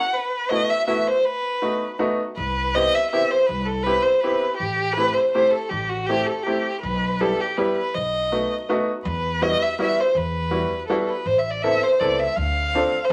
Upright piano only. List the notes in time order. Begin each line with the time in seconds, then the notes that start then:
0.50 A3 B3 E4 F#4
0.87 A3 B3 E4 F#4
1.62 A3 B3 D#4 F#4
1.99 A3 B3 D#4 F#4
2.76 B3 C4 E4 G4
3.13 B3 C4 E4 G4
3.86 B3 C4 E4 G4
4.23 B3 C4 E4 G4
4.97 A3 C4 E4 G4
5.34 A3 C4 E4 G4
6.09 A3 C4 E4 G4
6.46 A3 C4 E4 G4
7.21 G3 B3 E4 G4
7.58 G3 B3 E4 G4
8.32 A3 B3 D#4 F#4
8.69 A3 B3 D#4 F#4
9.42 G3 B3 E4 F#4
9.79 G3 B3 E4 F#4
10.51 G3 B3 E4 F#4
10.89 G3 B3 E4 F#4
11.64 B3 C4 E4 A4
12.01 B3 C4 E4 A4
12.75 C4 D4 F4 A4